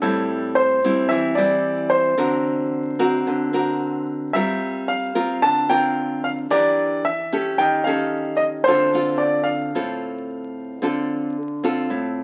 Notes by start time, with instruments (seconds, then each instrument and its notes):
0.02 nylon-string guitar A2 G3 C4 E4, grand piano A4
0.55 grand piano C5
0.84 nylon-string guitar G3 C4 E4
1.09 nylon-string guitar E3, grand piano E5
1.35 nylon-string guitar G3 C4 E4, grand piano D5
1.90 grand piano C5
2.18 nylon-string guitar D3 C4 F#4 A#4
2.99 nylon-string guitar C4 F#4 A#4
3.27 nylon-string guitar D3
3.53 nylon-string guitar C4 F#4 A#4
4.33 nylon-string guitar G3 C4 F4 A#4, grand piano E5
4.88 grand piano F5
5.15 nylon-string guitar C4 F4 A#4
5.42 nylon-string guitar D3, grand piano A5
5.69 nylon-string guitar C4 F4 A#4, grand piano G5
6.24 grand piano F5
6.50 nylon-string guitar E3 D4 G4 A#4, grand piano D5
7.05 grand piano E5
7.33 nylon-string guitar C#4 G4 A4
7.58 nylon-string guitar D#3, grand piano G5
7.84 nylon-string guitar C#4 G4 A4, grand piano F5
8.37 grand piano D#5
8.64 nylon-string guitar D3 C4 F4, grand piano C5
8.68 nylon-string guitar A4
8.94 nylon-string guitar C4 F4 A4
9.18 grand piano D5
9.43 grand piano F5
9.75 nylon-string guitar A2 C4 F4 A4
10.82 nylon-string guitar D3 C4 F4 A4
11.63 nylon-string guitar C4 F4 A4
11.90 nylon-string guitar A2